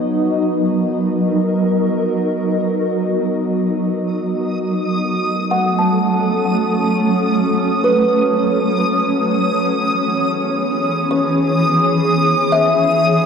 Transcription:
0, 0, Header, 1, 5, 480
1, 0, Start_track
1, 0, Tempo, 500000
1, 12726, End_track
2, 0, Start_track
2, 0, Title_t, "Synth texture"
2, 0, Program_c, 0, 99
2, 3447, Note_on_c, 0, 87, 72
2, 12726, Note_off_c, 0, 87, 0
2, 12726, End_track
3, 0, Start_track
3, 0, Title_t, "Kalimba"
3, 0, Program_c, 1, 108
3, 0, Note_on_c, 1, 73, 46
3, 232, Note_off_c, 1, 73, 0
3, 5291, Note_on_c, 1, 78, 52
3, 5555, Note_on_c, 1, 81, 42
3, 6994, Note_off_c, 1, 78, 0
3, 7239, Note_off_c, 1, 81, 0
3, 7527, Note_on_c, 1, 71, 56
3, 9237, Note_off_c, 1, 71, 0
3, 10666, Note_on_c, 1, 73, 64
3, 11979, Note_off_c, 1, 73, 0
3, 12021, Note_on_c, 1, 76, 72
3, 12726, Note_off_c, 1, 76, 0
3, 12726, End_track
4, 0, Start_track
4, 0, Title_t, "Ambient pad"
4, 0, Program_c, 2, 92
4, 0, Note_on_c, 2, 54, 62
4, 0, Note_on_c, 2, 63, 61
4, 0, Note_on_c, 2, 70, 79
4, 0, Note_on_c, 2, 75, 69
4, 3470, Note_off_c, 2, 70, 0
4, 3996, Note_on_c, 2, 57, 59
4, 4390, Note_on_c, 2, 69, 71
4, 4514, Note_off_c, 2, 63, 0
4, 4728, Note_on_c, 2, 61, 69
4, 4838, Note_on_c, 2, 73, 60
4, 5128, Note_off_c, 2, 75, 0
4, 8846, Note_on_c, 2, 52, 68
4, 8859, Note_off_c, 2, 69, 0
4, 8867, Note_off_c, 2, 54, 0
4, 8873, Note_off_c, 2, 57, 0
4, 9107, Note_on_c, 2, 68, 63
4, 9393, Note_on_c, 2, 59, 58
4, 11560, Note_off_c, 2, 59, 0
4, 12214, Note_on_c, 2, 70, 67
4, 12479, Note_off_c, 2, 68, 0
4, 12726, Note_off_c, 2, 52, 0
4, 12726, Note_off_c, 2, 61, 0
4, 12726, Note_off_c, 2, 70, 0
4, 12726, Note_off_c, 2, 73, 0
4, 12726, End_track
5, 0, Start_track
5, 0, Title_t, "Synth drone"
5, 0, Program_c, 3, 95
5, 0, Note_on_c, 3, 59, 65
5, 0, Note_on_c, 3, 66, 61
5, 12726, Note_off_c, 3, 59, 0
5, 12726, Note_off_c, 3, 66, 0
5, 12726, End_track
0, 0, End_of_file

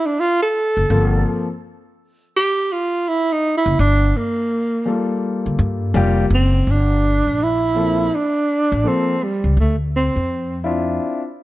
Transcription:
0, 0, Header, 1, 4, 480
1, 0, Start_track
1, 0, Tempo, 722892
1, 594, Time_signature, 4, 2, 24, 8
1, 7590, End_track
2, 0, Start_track
2, 0, Title_t, "Tenor saxophone"
2, 0, Program_c, 0, 66
2, 39, Note_on_c, 0, 62, 95
2, 131, Note_on_c, 0, 65, 111
2, 141, Note_off_c, 0, 62, 0
2, 276, Note_off_c, 0, 65, 0
2, 281, Note_on_c, 0, 69, 113
2, 968, Note_off_c, 0, 69, 0
2, 1570, Note_on_c, 0, 67, 110
2, 1807, Note_on_c, 0, 65, 100
2, 1817, Note_off_c, 0, 67, 0
2, 2047, Note_on_c, 0, 64, 114
2, 2057, Note_off_c, 0, 65, 0
2, 2205, Note_on_c, 0, 63, 100
2, 2215, Note_off_c, 0, 64, 0
2, 2359, Note_off_c, 0, 63, 0
2, 2372, Note_on_c, 0, 64, 101
2, 2512, Note_off_c, 0, 64, 0
2, 2523, Note_on_c, 0, 62, 106
2, 2765, Note_on_c, 0, 58, 92
2, 2775, Note_off_c, 0, 62, 0
2, 3479, Note_off_c, 0, 58, 0
2, 4212, Note_on_c, 0, 60, 100
2, 4455, Note_on_c, 0, 62, 112
2, 4465, Note_off_c, 0, 60, 0
2, 4935, Note_on_c, 0, 64, 109
2, 4945, Note_off_c, 0, 62, 0
2, 5411, Note_on_c, 0, 62, 107
2, 5421, Note_off_c, 0, 64, 0
2, 5896, Note_on_c, 0, 60, 102
2, 5906, Note_off_c, 0, 62, 0
2, 6133, Note_on_c, 0, 55, 86
2, 6143, Note_off_c, 0, 60, 0
2, 6363, Note_off_c, 0, 55, 0
2, 6377, Note_on_c, 0, 57, 83
2, 6479, Note_off_c, 0, 57, 0
2, 6615, Note_on_c, 0, 60, 88
2, 7058, Note_off_c, 0, 60, 0
2, 7590, End_track
3, 0, Start_track
3, 0, Title_t, "Grand piano"
3, 0, Program_c, 1, 0
3, 596, Note_on_c, 1, 53, 69
3, 600, Note_on_c, 1, 58, 61
3, 602, Note_on_c, 1, 60, 60
3, 608, Note_on_c, 1, 69, 67
3, 958, Note_off_c, 1, 53, 0
3, 960, Note_off_c, 1, 58, 0
3, 961, Note_off_c, 1, 60, 0
3, 964, Note_off_c, 1, 69, 0
3, 3223, Note_on_c, 1, 55, 59
3, 3229, Note_on_c, 1, 58, 58
3, 3232, Note_on_c, 1, 65, 54
3, 3235, Note_on_c, 1, 69, 62
3, 3914, Note_off_c, 1, 55, 0
3, 3917, Note_off_c, 1, 58, 0
3, 3918, Note_off_c, 1, 65, 0
3, 3920, Note_off_c, 1, 69, 0
3, 3945, Note_on_c, 1, 55, 90
3, 3947, Note_on_c, 1, 58, 79
3, 3952, Note_on_c, 1, 65, 84
3, 3959, Note_on_c, 1, 67, 97
3, 4138, Note_off_c, 1, 55, 0
3, 4139, Note_off_c, 1, 58, 0
3, 4141, Note_off_c, 1, 65, 0
3, 4144, Note_off_c, 1, 67, 0
3, 5144, Note_on_c, 1, 53, 57
3, 5150, Note_on_c, 1, 58, 55
3, 5151, Note_on_c, 1, 60, 54
3, 5155, Note_on_c, 1, 69, 63
3, 5337, Note_off_c, 1, 53, 0
3, 5340, Note_off_c, 1, 58, 0
3, 5341, Note_off_c, 1, 60, 0
3, 5343, Note_off_c, 1, 69, 0
3, 5866, Note_on_c, 1, 53, 63
3, 5870, Note_on_c, 1, 58, 59
3, 5876, Note_on_c, 1, 60, 52
3, 5882, Note_on_c, 1, 69, 67
3, 6058, Note_off_c, 1, 53, 0
3, 6060, Note_off_c, 1, 58, 0
3, 6063, Note_off_c, 1, 60, 0
3, 6066, Note_off_c, 1, 69, 0
3, 7065, Note_on_c, 1, 64, 74
3, 7069, Note_on_c, 1, 60, 58
3, 7074, Note_on_c, 1, 62, 67
3, 7077, Note_on_c, 1, 65, 76
3, 7432, Note_off_c, 1, 64, 0
3, 7434, Note_off_c, 1, 60, 0
3, 7437, Note_off_c, 1, 62, 0
3, 7438, Note_off_c, 1, 65, 0
3, 7590, End_track
4, 0, Start_track
4, 0, Title_t, "Upright bass"
4, 0, Program_c, 2, 32
4, 510, Note_on_c, 2, 30, 85
4, 585, Note_off_c, 2, 30, 0
4, 598, Note_on_c, 2, 31, 97
4, 809, Note_off_c, 2, 31, 0
4, 2429, Note_on_c, 2, 30, 93
4, 2505, Note_off_c, 2, 30, 0
4, 2517, Note_on_c, 2, 31, 105
4, 2729, Note_off_c, 2, 31, 0
4, 3626, Note_on_c, 2, 38, 84
4, 3703, Note_off_c, 2, 38, 0
4, 3710, Note_on_c, 2, 43, 105
4, 3945, Note_on_c, 2, 29, 100
4, 3955, Note_off_c, 2, 43, 0
4, 4162, Note_off_c, 2, 29, 0
4, 4186, Note_on_c, 2, 30, 97
4, 4403, Note_off_c, 2, 30, 0
4, 4429, Note_on_c, 2, 31, 93
4, 4781, Note_off_c, 2, 31, 0
4, 4827, Note_on_c, 2, 34, 79
4, 5367, Note_off_c, 2, 34, 0
4, 5789, Note_on_c, 2, 33, 94
4, 5865, Note_off_c, 2, 33, 0
4, 6268, Note_on_c, 2, 37, 86
4, 6344, Note_off_c, 2, 37, 0
4, 6353, Note_on_c, 2, 38, 90
4, 6703, Note_off_c, 2, 38, 0
4, 6746, Note_on_c, 2, 41, 75
4, 7287, Note_off_c, 2, 41, 0
4, 7590, End_track
0, 0, End_of_file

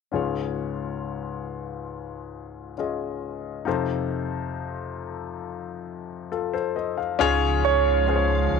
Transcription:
0, 0, Header, 1, 5, 480
1, 0, Start_track
1, 0, Key_signature, -5, "major"
1, 0, Tempo, 882353
1, 74, Time_signature, 4, 2, 24, 8
1, 4677, End_track
2, 0, Start_track
2, 0, Title_t, "Grand piano"
2, 0, Program_c, 0, 0
2, 4160, Note_on_c, 0, 73, 84
2, 4677, Note_off_c, 0, 73, 0
2, 4677, End_track
3, 0, Start_track
3, 0, Title_t, "Grand piano"
3, 0, Program_c, 1, 0
3, 63, Note_on_c, 1, 61, 45
3, 69, Note_on_c, 1, 65, 43
3, 71, Note_on_c, 1, 37, 44
3, 73, Note_on_c, 1, 44, 46
3, 75, Note_on_c, 1, 68, 41
3, 83, Note_on_c, 1, 73, 53
3, 181, Control_c, 1, 64, 127
3, 1487, Note_off_c, 1, 61, 0
3, 1490, Note_off_c, 1, 65, 0
3, 1492, Note_off_c, 1, 68, 0
3, 1497, Note_off_c, 1, 73, 0
3, 1511, Note_on_c, 1, 61, 37
3, 1515, Note_on_c, 1, 65, 31
3, 1519, Note_on_c, 1, 68, 34
3, 1522, Note_on_c, 1, 75, 42
3, 1971, Note_off_c, 1, 37, 0
3, 1971, Note_off_c, 1, 44, 0
3, 1985, Note_off_c, 1, 65, 0
3, 1986, Note_on_c, 1, 63, 54
3, 1992, Note_off_c, 1, 61, 0
3, 1993, Note_on_c, 1, 65, 48
3, 1996, Note_off_c, 1, 68, 0
3, 1996, Note_on_c, 1, 41, 52
3, 1996, Note_on_c, 1, 48, 50
3, 1998, Note_off_c, 1, 75, 0
3, 1999, Note_on_c, 1, 69, 48
3, 2000, Control_c, 1, 64, 0
3, 2007, Note_on_c, 1, 72, 57
3, 2088, Control_c, 1, 64, 127
3, 3412, Note_off_c, 1, 65, 0
3, 3414, Note_off_c, 1, 69, 0
3, 3418, Note_off_c, 1, 72, 0
3, 3437, Note_on_c, 1, 69, 45
3, 3439, Note_on_c, 1, 65, 38
3, 3549, Note_off_c, 1, 69, 0
3, 3550, Note_off_c, 1, 65, 0
3, 3555, Note_on_c, 1, 72, 58
3, 3559, Note_on_c, 1, 69, 47
3, 3668, Note_off_c, 1, 72, 0
3, 3670, Note_off_c, 1, 69, 0
3, 3677, Note_on_c, 1, 75, 47
3, 3681, Note_on_c, 1, 72, 41
3, 3789, Note_off_c, 1, 75, 0
3, 3792, Note_off_c, 1, 72, 0
3, 3794, Note_on_c, 1, 77, 45
3, 3888, Note_off_c, 1, 63, 0
3, 3893, Note_off_c, 1, 41, 0
3, 3893, Note_off_c, 1, 48, 0
3, 3910, Note_on_c, 1, 61, 101
3, 3915, Note_on_c, 1, 65, 88
3, 3916, Note_on_c, 1, 44, 65
3, 3919, Note_on_c, 1, 68, 93
3, 3921, Control_c, 1, 64, 0
3, 3921, Note_on_c, 1, 73, 115
3, 4022, Note_off_c, 1, 77, 0
3, 4030, Control_c, 1, 64, 127
3, 4368, Note_off_c, 1, 61, 0
3, 4371, Note_off_c, 1, 65, 0
3, 4372, Note_off_c, 1, 68, 0
3, 4374, Note_off_c, 1, 73, 0
3, 4392, Note_on_c, 1, 61, 62
3, 4395, Note_on_c, 1, 65, 60
3, 4400, Note_on_c, 1, 68, 56
3, 4402, Note_on_c, 1, 72, 53
3, 4433, Note_off_c, 1, 72, 0
3, 4438, Note_on_c, 1, 73, 67
3, 4613, Note_off_c, 1, 44, 0
3, 4677, Note_off_c, 1, 61, 0
3, 4677, Note_off_c, 1, 65, 0
3, 4677, Note_off_c, 1, 68, 0
3, 4677, Note_off_c, 1, 73, 0
3, 4677, End_track
4, 0, Start_track
4, 0, Title_t, "Ambient pad"
4, 0, Program_c, 2, 92
4, 3912, Note_on_c, 2, 56, 69
4, 3912, Note_on_c, 2, 77, 89
4, 3913, Note_on_c, 2, 49, 79
4, 3914, Note_on_c, 2, 53, 76
4, 4677, Note_off_c, 2, 49, 0
4, 4677, Note_off_c, 2, 53, 0
4, 4677, Note_off_c, 2, 56, 0
4, 4677, Note_off_c, 2, 77, 0
4, 4677, End_track
5, 0, Start_track
5, 0, Title_t, "Sub bass"
5, 0, Program_c, 3, 38
5, 3916, Note_on_c, 3, 37, 111
5, 4613, Note_off_c, 3, 37, 0
5, 4636, Note_on_c, 3, 37, 95
5, 4677, Note_off_c, 3, 37, 0
5, 4677, End_track
0, 0, End_of_file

